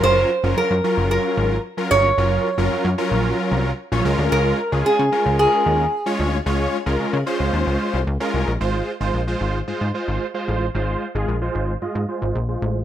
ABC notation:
X:1
M:4/4
L:1/16
Q:1/4=112
K:Abmix
V:1 name="Resonator guitar played with a steel bar"
c4 B4 B4 z2 d2- | d4 z12 | B4 A4 A8- | A12 z4 |
z16 | z16 |]
V:2 name="Analog polysynth"
[G,DFB]2 z [G,DFB]2 z [G,DFB]4- [G,DFB] z2 [G,DFB]2 z | [G,DFB]2 z [G,DFB]2 z [G,DFB]4- [G,DFB] z2 [G,DFd] [A,DFB]2- | [A,DFB]2 z [A,DFA]2 z [A,DFB]4- [A,DFB] z2 [A,DFd]2 z | [A,DFd]2 z [A,DFB]2 z [A,DFc]4- [A,DFc] z2 [A,DFB]2 z |
[A,Fc]2 z [A,Fc]2 [A,Fc]2 z [A,Fc]2 [A,Fc]2 z [A,Fc]2 z | [A,Fc]2 z [A,FA]2 [A,Fc]2 z [A,Fe]2 [A,Fc]2 z [A,Fc]2 z |]
V:3 name="Analog synth bass" clef=bass
G,,,2 z G,,, G,, G,, z G,,,2 z A,,,2 z2 =G,,,2 | G,,,2 z G,,, G,, G,, z B,,,2 z C,,2 z B,,, D,, =D,, | D,,2 z D,, D, D, z D,,2 z E,,2 z2 =D,,2 | D,,2 z D,, D, D, z D,, E,, D,, z C,, D,, z C,, B,,, |
A,,,2 z A,,, B,,,2 A,,,2 A,, A,, z A,,, z2 =A,,,2 | A,,,2 z A,,, B,,,2 A,,,2 A,, A,, z A,,, B,,,2 =A,,,2 |]